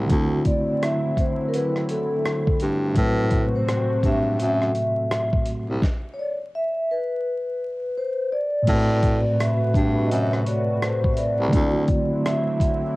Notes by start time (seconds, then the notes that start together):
0.06 D3 A3, closed hi-hat
0.10 D2 D3 F#3 C4 E4, kick
0.15 E4 F#4
0.45 D5, kick, closed hi-hat
0.83 E5, cross-stick, closed hi-hat
1.17 C5, kick, closed hi-hat
1.48 A#4
1.54 B4, closed hi-hat
1.76 cross-stick
1.89 A4, closed hi-hat
2.25 cross-stick, closed hi-hat
2.47 kick
2.60 G2, closed hi-hat
2.93 A2 C3 A3 C4 F#4, kick, closed hi-hat
2.98 F#3 C4 B4
3.05 F#4
3.31 kick, closed hi-hat
3.56 C5
3.68 cross-stick, closed hi-hat
4.03 G2 E5, kick, closed hi-hat
4.40 F#2 E5, closed hi-hat
4.62 cross-stick
4.75 closed hi-hat
5.11 cross-stick, closed hi-hat
5.33 kick
5.46 closed hi-hat
5.69 C2
5.82 kick, snare
6.14 C#5
6.19 D5
6.55 E5
6.91 B4
7.97 C5
8.32 D5
8.62 A2 A3
8.67 A2 C3 A3 C4 F#4 B4, kick, closed hi-hat, crash
8.74 B4
9.03 kick, closed hi-hat
9.40 E5, cross-stick, closed hi-hat
9.74 G2, kick, closed hi-hat
10.06 D#5
10.11 F#2 E5, closed hi-hat
10.33 cross-stick
10.42 C#5
10.46 D5, closed hi-hat
10.82 C5, cross-stick, closed hi-hat
11.04 kick
11.13 E5, closed hi-hat
11.18 D5
11.40 C2
11.48 D3 A3
11.53 D2 D3 F#3 C4 E4, kick, closed hi-hat
11.57 E4 F#4
11.88 kick, closed hi-hat
12.26 E5, cross-stick, closed hi-hat
12.60 kick, closed hi-hat